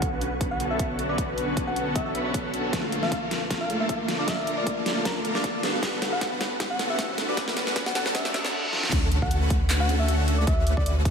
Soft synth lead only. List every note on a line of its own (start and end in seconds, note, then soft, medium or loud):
0.51 0.65 F#5 medium
0.71 0.76 E5 medium
0.80 0.86 E5 medium
1.09 1.16 D5 medium
1.67 1.73 F#5 medium
1.76 1.83 F#5 medium
1.96 2.04 E5 medium
2.06 2.12 E5 medium
2.15 2.22 E5 medium
3.03 3.16 F5 medium
3.61 3.74 F5 medium
3.80 3.86 E5 medium
3.89 3.96 E5 medium
4.19 4.26 D5 medium
4.28 4.56 E5 medium
4.58 4.63 D5 medium
4.67 4.73 D5 medium
5.05 5.20 A#4 medium
5.35 5.63 D5 medium
6.13 6.26 F#5 loud
6.71 6.84 F#5 medium
6.90 6.96 E5 medium
7.29 7.36 D5 medium
7.87 7.92 F#5 medium
7.95 8.02 F#5 medium
8.15 8.23 E5 medium
8.25 8.31 E5 medium
8.34 8.41 E5 medium
9.22 9.36 F#5 loud
9.80 9.94 F#5 medium
10.00 10.05 E5 medium
10.09 10.15 E5 medium
10.38 10.46 D5 medium
10.47 10.75 E5 medium
10.77 10.83 D5 medium
10.86 10.93 D5 medium